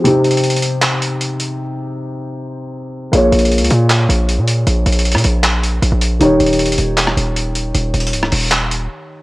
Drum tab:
HH |x-----x-x-x-x-x-x-x-----x-----x-----x-----x-----|------------------------------------------------|x-----x-x-x-x-x-x-x-----x-----x-----x-----x-----|x-----x-x-x-x-x-x-x-----x-----x-----x-----x-----|
CP |------------------------x-----------------------|------------------------------------------------|------------------------x-----------------------|------------------------x-----------------------|
SD |------------------------------------------------|------------------------------------------------|------------------------------------------------|---------------r--------------------------------|

HH |x-----x-x-x-x-x-x-x-----x-----x-----x-----x-----|x-----x-x-x-x-----o-----x-----x-----------------|
CP |------------------------x-----------------------|------------------------x-----------------------|
SD |---------------------------r--------------------|---------------r--------------------------------|